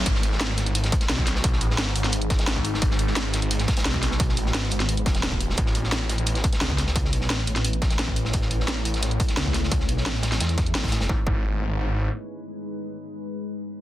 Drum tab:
HH |x---x---x---x-x-x-x-x-x-x---x---|x---x---x---x-x-x-x-x-x-x---x---|x---x---x---x-x-x-x-x-x-x---x---|x---x---x---x-x-x-x-x-x-x---x---|
SD |--o---o-o-o-o-----o---o-o-o-o-o-|--o---o-o-o---o-----o-o-o-o---o-|--o---o-o-o-o-----o-o-o-o-o-o-o-|--o---o-o-o---o-----o-o-o-o---o-|
BD |o-------------------o-----o-----|o-------------------o-----o-----|o-------------------o-----o-----|o-------------------o-----o-----|

HH |x---x---x---x-x-x-x-x-x-x---x---|x---x---x---x-x-x-x-x-x-x---x---|x---x---x---x-x-x-x-x-x-x---x---|x---x---x---x-x-x-x-x-x-x-xxx-x-|
SD |--o---o-o-o-o-----o---o-o-o-o-o-|--o---o-o-o---o-----o-o-o-o---o-|--o---o-o-o---o-o-----o-o-o-o-o-|--o---o-o-o-o-o-o-o-o---o-ooo-o-|
BD |o-------------------o-----o-----|o-------------------o-----o-----|o-------------------o-----o-----|o-------------------o-----o-----|

HH |--------------------------------|--------------------------------|
SD |--------------------------------|--------------------------------|
BD |o---o---------------------------|--------------------------------|